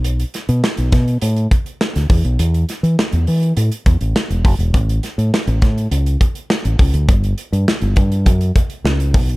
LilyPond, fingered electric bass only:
\new Staff \with { instrumentName = "Fingered electric bass" } { \clef bass \time 4/4 \key a \mixolydian \tempo 4 = 102 b,,8 r16 b,16 r16 b,,16 b,8 a,8 r8. d,16 e,16 b,,16 | e,8 r16 e16 r16 e,16 e8 a,16 r16 e,16 a,,16 r16 e,,16 fis,,16 e,,16 | a,,8 r16 a,16 r16 a,,16 a,8 cis,8 r8. a,,16 cis,16 d,16 | g,,8 r16 g,16 r16 g,,16 g,8 fis,8 r8 cis,8 b,,8 | }